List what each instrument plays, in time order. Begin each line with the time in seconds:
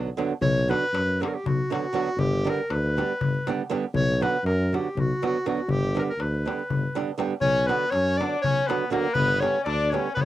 Already playing: tuba B1
0.07 darbuka tek
0.17 nylon-string guitar D3 F#3 B3 D4, darbuka tek
0.31 darbuka tek
0.41 tuba B1, clarinet C#5, darbuka dum
0.57 darbuka tek
0.68 nylon-string guitar D3 F#3 B3 D4 F#4, clarinet B4, darbuka tek
0.93 tuba F#2, darbuka tek
1.09 darbuka tek
1.20 nylon-string guitar D3 F#3 B3 D4 F#4, clarinet G4, darbuka tek
1.27 clarinet A#4
1.34 clarinet G4
1.45 tuba B1, clarinet F#4, darbuka dum
1.59 darbuka tek
1.70 nylon-string guitar D3 F#3 B3 D4 F#4, clarinet F#4, darbuka tek
1.84 darbuka tek
1.93 nylon-string guitar D3 F#3 B3 D4 F#4, darbuka tek
2.08 darbuka tek
2.17 tuba G1, clarinet G4, darbuka dum
2.33 darbuka tek
2.45 nylon-string guitar D3 G3 B3 D4 G4, darbuka tek
2.49 clarinet A#4
2.70 tuba D2, clarinet B4, darbuka tek
2.84 darbuka tek
2.97 nylon-string guitar D3 G3 B3 D4 G4, darbuka tek
3.21 tuba G1, darbuka dum
3.34 darbuka tek
3.47 nylon-string guitar D3 G3 B3 D4 G4, darbuka tek
3.59 darbuka tek
3.70 nylon-string guitar D3 G3 B3 D4 G4, darbuka tek
3.83 darbuka tek
3.93 tuba B1, clarinet C#5, darbuka dum
4.09 darbuka tek
4.21 nylon-string guitar D3 F#3 B3 D4 F#4, clarinet B4, darbuka tek
4.44 tuba F#2, clarinet A#4, darbuka tek
4.60 darbuka tek
4.73 nylon-string guitar D3 F#3 B3 D4 F#4, clarinet G4, darbuka tek
4.96 tuba B1, clarinet F#4, darbuka dum
5.11 darbuka tek
5.22 nylon-string guitar D3 F#3 B3 D4 F#4, clarinet F#4, darbuka tek
5.35 darbuka tek
5.46 nylon-string guitar D3 F#3 B3 D4 F#4, clarinet F#4, darbuka tek
5.58 darbuka tek
5.67 tuba G1, clarinet G4, darbuka dum
5.83 darbuka tek
5.95 nylon-string guitar D3 G3 B3 D4 G4, clarinet A#4, darbuka tek
6.01 clarinet G4
6.09 clarinet A#4, darbuka tek
6.19 tuba D2, clarinet B4, darbuka tek
6.34 darbuka tek
6.46 nylon-string guitar D3 G3 B3 D4 G4, darbuka tek
6.59 darbuka tek
6.70 tuba G1, darbuka dum
6.84 darbuka tek
6.95 nylon-string guitar D3 G3 B3 D4 G4, darbuka tek
7.08 darbuka tek
7.18 nylon-string guitar D3 G3 B3 D4 G4, darbuka tek
7.30 darbuka tek
7.41 tuba B1, trumpet C#4, clarinet C#5, darbuka dum
7.55 darbuka tek
7.67 nylon-string guitar D3 F#3 B3 D4 F#4, trumpet B3, clarinet B4, darbuka tek
7.91 tuba F#2, trumpet C#4, clarinet C#5, darbuka tek
8.18 nylon-string guitar D3 F#3 B3 D4, trumpet D4, clarinet D5, darbuka tek
8.22 nylon-string guitar F#4
8.42 tuba B1, trumpet C#4, clarinet C#5, darbuka dum
8.57 darbuka tek
8.67 nylon-string guitar D3 F#3 B3 D4 F#4, trumpet B3, clarinet B4, darbuka tek
8.82 darbuka tek
8.90 nylon-string guitar D3 F#3 B3 D4 F#4, trumpet A#3, clarinet A#4, darbuka tek
9.04 darbuka tek
9.13 tuba G1, trumpet B3, clarinet B4, darbuka dum
9.40 nylon-string guitar D3 G3 B3 D4 G4, trumpet C#4, clarinet C#5, darbuka tek
9.64 tuba D2, trumpet D4, clarinet D5, darbuka tek
9.80 darbuka tek
9.91 nylon-string guitar D3 G3 B3 D4 G4, trumpet C#4, clarinet C#5, darbuka tek
10.14 tuba G1, trumpet B3, clarinet B4, darbuka dum
10.21 clarinet C#5